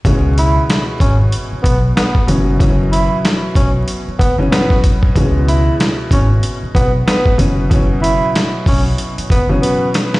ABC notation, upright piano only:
X:1
M:4/4
L:1/16
Q:"Swing 16ths" 1/4=94
K:C#m
V:1 name="Upright piano" clef=bass
[B,,E,G,C]12- [B,,E,G,C]2 [B,,E,F,C]2 | [B,,E,F,C]8- [B,,E,F,C]2 z [B,,E,F,C]4- [B,,E,F,C] | [B,,E,G,C]12- [B,,E,G,C]2 [B,,E,F,C]2 | [B,,E,F,C]8- [B,,E,F,C]2 z [B,,E,F,C]4- [B,,E,F,C] |]